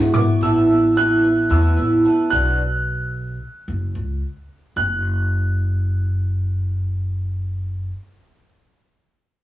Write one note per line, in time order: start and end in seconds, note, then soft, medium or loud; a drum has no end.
0.00 0.14 G#3 medium
0.00 0.14 B3 medium
0.00 0.13 E4 medium
0.00 0.12 F#4 medium
0.13 0.41 B3 medium
0.13 0.41 E4 medium
0.13 0.41 F#4 medium
0.13 0.42 D6 medium
0.13 floor tom loud
0.41 1.47 A1 loud
0.41 0.70 A3 medium
0.41 0.70 B3 medium
0.41 0.69 E4 medium
0.41 0.68 B4 medium
0.41 0.99 E6 loud
0.69 0.94 B3 medium
0.69 0.95 E4 medium
0.69 0.96 B4 medium
0.95 1.23 A3 medium
0.95 1.23 B3 medium
0.95 1.23 E4 medium
0.95 1.22 B4 medium
0.95 1.53 F#6 loud
1.23 1.48 B3 soft
1.23 1.49 E4 soft
1.23 1.49 B4 medium
1.49 1.76 E2 loud
1.49 1.77 A3 medium
1.49 1.77 B3 medium
1.49 1.77 E4 medium
1.49 1.75 B4 loud
1.49 2.02 E6 medium
1.76 2.03 A1 loud
1.76 2.04 B3 medium
1.76 2.04 E4 medium
1.76 2.05 B4 medium
2.04 2.32 A3 medium
2.04 2.32 B3 medium
2.04 2.32 E4 medium
2.04 2.30 B4 medium
2.30 3.37 B1 loud
2.30 2.60 D4 medium
2.30 2.60 F#4 medium
2.30 2.59 B4 medium
2.30 3.91 F#6 loud
3.68 3.93 F#1 loud
3.95 4.20 C#2 medium
4.76 7.90 F#1 medium
4.76 7.91 F#6 loud